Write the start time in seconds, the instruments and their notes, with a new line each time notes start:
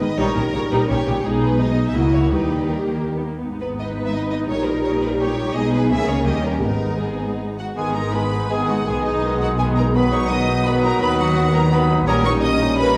Already playing: french horn section B3 D#4, violin section B4
0.00 double bass section G#1, cello section G#2, viola section D#3 G#3, violin section D#5
0.17 double bass section A#1, cello section A#2, french horn section G3, viola section G3 D#4, violin section A#4 C#5
0.35 double bass section A#1, cello section A#2, viola section D#3 C#4, violin section A#4
0.54 double bass section A#1, cello section A#2, viola section C#3 A#3, violin section C#5
0.71 double bass section A#1, cello section A#2, viola section G3 D#4, violin section B4
0.89 double bass section A#1, cello section A#2, viola section D#3 C#4, violin section G4 C#5
1.07 double bass section A#1, cello section A#2, viola section C#3 A#3
1.24 double bass section B1, cello section B2, viola section G#3 D#4, french horn section G#3 D#4, violin section G#4
1.43 violin section B4
1.59 viola section G#3 D#4, french horn section G#3 D#4, violin section D#4 D#5
1.86 violin section E5
1.93 double bass section C#2, cello section C#3, viola section A#3 E4, french horn section A#3 E4, violin section F#4 D#5
2.13 violin section C#5
2.31 double bass section D#2, cello section D#3, viola section G3 D#4, french horn section G3 D#4, violin section G4 B4
2.68 viola section G3, french horn section G3 D#4, violin section A#4
2.87 viola section A#3
3.16 viola section B3
3.24 viola section A#3
3.42 double bass section G#1, cello section G#2, viola section B3 D#4, french horn section B3 D#4
3.60 violin section B4
3.78 violin section B4 D#5
4.06 violin section E5
4.14 violin section D#5
4.32 violin section D#5
4.50 double bass section A#1, cello section A#2, viola section G3, french horn section G3, violin section A#4 C#5
4.67 violin section A#4
4.84 violin section C#5
5.03 violin section B4
5.20 violin section G4 C#5
5.55 double bass section B1, cello section B2, french horn section G#3 D#4, viola section G#3 D#4, violin section G#4 D#5
5.75 violin section B4
5.91 double bass section C#2, cello section C#3, viola section A#3 C#4, french horn section A#3 C#4, violin section G#4 E5
6.08 violin section C#5
6.26 double bass section D#2, cello section D#3, viola section G3, french horn section G3 C#4, violin section G4 D#5
6.46 violin section A#4
6.63 double bass section G#1, cello section G#2, french horn section G#3 B3, viola section G#3 B3, violin section D#4 A#4
7.01 french horn section G#3 B3, violin section G#4
7.59 violin section F#4 F#5
7.76 double bass section G#1, cello section G#2, viola section D#3 B3, french horn section G#3 B3, bassoon G#3, clarinet G#4, violin section G#4 G#5, flute D#6
7.94 viola section G#3 D#4, violin section A#4 A#5
8.13 viola section D#3 B3, bassoon G#3, clarinet G#4, violin section B4 B5, flute D#6
8.32 viola section G#3 D#4
8.49 viola section D#3 B3, bassoon G#3, violin section G#4 G#5, clarinet G#4, flute D#6
8.69 viola section G#3 D#4, violin section F#4 F#5
8.86 double bass section B1, cello section B2, viola section D#3 B3, bassoon G#3, clarinet G#4, violin section G#4 G#5, flute D#6
9.04 viola section G#3 D#4, violin section D#4 D#5
9.23 viola section D#3 B3
9.40 viola section G#3 D#4, violin section F#4 F#5
9.58 viola section D#3 B3, bassoon G#3, violin section G#4 G#5, clarinet G#4, flute D#6
9.76 viola section G#3 D#4, violin section A#4 A#5
9.94 viola section D#3 B3, bassoon F#3, french horn section B3, clarinet B4, violin section B4 B5, flute D#6
10.13 viola section F#3 D#4, violin section C#5 C#6
10.29 viola section D#3 B3, bassoon F#3, clarinet B4, violin section D#5 D#6, flute D#6
10.49 viola section F#3 D#4
10.65 viola section D#3 B3, french horn section F#3, bassoon F#3, clarinet B4, violin section B4 B5, flute D#6
10.83 viola section F#3 D#4, violin section A#4 A#5
11.01 double bass section D#2, cello section D#3, viola section D#3 B3, bassoon F#3, violin section B4 B5, clarinet B4, flute D#6
11.19 viola section F#3 D#4, violin section F#4 F#5
11.37 viola section D#3 B3
11.54 viola section F#3 D#4, violin section A#4 A#5
11.72 viola section D#3 B3, bassoon F#3, clarinet B4, violin section B4 B5, flute D#6
11.89 viola section F#3 D#4
12.06 double bass section A#1, cello section A#2, french horn section G3 C#4, bassoon G3, viola section A#3 C#4, violin section A#4 A#5, clarinet C#5, flute D#6
12.24 viola section G3 D#4, violin section C#5 C#6
12.41 viola section A#3 C#4, violin section D#5 D#6
12.60 viola section G3 D#4
12.76 viola section A#3 C#4, violin section B4 B5